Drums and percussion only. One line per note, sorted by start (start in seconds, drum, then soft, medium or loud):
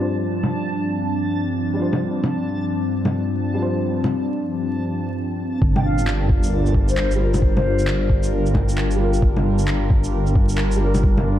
0.43 low bongo soft
1.93 low bongo medium
2.24 low bongo soft
3.05 low bongo medium
4.04 low bongo soft
5.62 kick loud
5.76 low bongo medium
5.98 shaker medium
6.07 clap loud
6.29 kick loud
6.44 shaker medium
6.66 shaker soft
6.74 kick loud
6.89 shaker medium
6.98 clap loud
7.12 shaker soft
7.34 low bongo medium
7.34 shaker medium
7.42 kick loud
7.57 low bongo medium
7.79 shaker medium
7.87 clap loud
8.10 kick loud
8.23 shaker medium
8.46 shaker soft
8.54 kick loud
8.54 low bongo medium
8.69 shaker medium
8.78 clap loud
8.91 shaker soft
9.14 shaker medium
9.22 kick loud
9.36 low bongo soft
9.59 shaker medium
9.68 clap loud
9.90 kick loud
10.04 shaker medium
10.27 shaker soft
10.36 kick loud
10.49 shaker medium
10.58 clap loud
10.72 shaker soft
10.95 low bongo medium
10.95 shaker medium
11.03 kick loud
11.17 low bongo soft